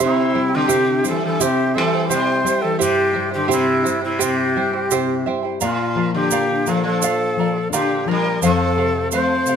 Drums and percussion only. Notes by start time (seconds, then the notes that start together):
0.00 shaker
0.69 shaker
1.05 shaker
1.41 shaker
2.11 shaker
2.47 shaker
2.81 shaker
3.51 shaker
3.86 shaker
4.21 shaker
4.91 shaker
5.61 shaker
6.31 shaker
6.66 shaker
7.02 shaker
7.73 shaker
8.42 shaker
9.12 shaker
9.46 shaker